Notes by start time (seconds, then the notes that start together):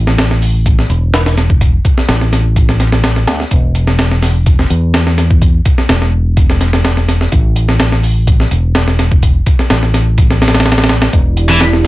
Already playing: A1
0.07 snare
0.18 snare, closed hi-hat
0.31 snare
0.42 open hi-hat
0.66 kick, closed hi-hat
0.79 snare
0.89 E1, closed hi-hat
1.14 snare, closed hi-hat
1.26 snare
1.37 snare, closed hi-hat
1.50 kick
1.61 kick, closed hi-hat
1.85 kick, closed hi-hat
1.97 muted fingered electric bass stroke, snare
2.08 A1, snare, closed hi-hat
2.21 snare
2.33 snare, closed hi-hat
2.56 kick, closed hi-hat
2.69 snare
2.80 snare, closed hi-hat
2.92 snare
3.04 snare, closed hi-hat
3.16 snare
3.27 D2, snare, closed hi-hat
3.40 snare
3.51 E1, kick, closed hi-hat
3.75 closed hi-hat
3.87 snare
3.99 snare, closed hi-hat
4.11 snare
4.22 snare, open hi-hat
4.46 kick, closed hi-hat
4.59 snare
4.70 E2, closed hi-hat
4.94 snare, closed hi-hat
5.07 snare
5.18 snare, closed hi-hat
5.30 kick
5.42 kick, closed hi-hat
5.65 kick, closed hi-hat
5.78 muted fingered electric bass stroke, snare
5.89 E1, snare, closed hi-hat
6.02 snare
6.37 kick, closed hi-hat
6.50 snare
6.61 snare, closed hi-hat
6.73 snare
6.85 snare, closed hi-hat
6.97 snare
7.08 snare, closed hi-hat
7.21 snare
7.32 A1, kick, closed hi-hat
7.56 closed hi-hat
7.69 snare
7.80 snare, closed hi-hat
7.92 snare
8.03 open hi-hat
8.27 kick, closed hi-hat
8.40 snare
8.51 E1, closed hi-hat
8.75 snare, closed hi-hat
8.88 snare
8.99 snare, closed hi-hat
9.11 kick
9.23 kick, closed hi-hat
9.46 kick, closed hi-hat
9.59 muted fingered electric bass stroke, snare
9.70 A1, snare, closed hi-hat
9.83 snare
9.94 snare, closed hi-hat
10.18 kick, closed hi-hat
10.30 snare
10.42 snare, closed hi-hat
10.48 snare, closed hi-hat
10.54 snare, closed hi-hat
10.60 snare, closed hi-hat
10.66 snare, closed hi-hat
10.72 snare, closed hi-hat
10.78 snare, closed hi-hat
10.84 snare, closed hi-hat
10.89 snare, closed hi-hat
11.02 snare, closed hi-hat
11.13 E1 E4 G4 D5, kick, closed hi-hat
11.37 closed hi-hat
11.49 E3, snare
11.60 snare, closed hi-hat
11.73 snare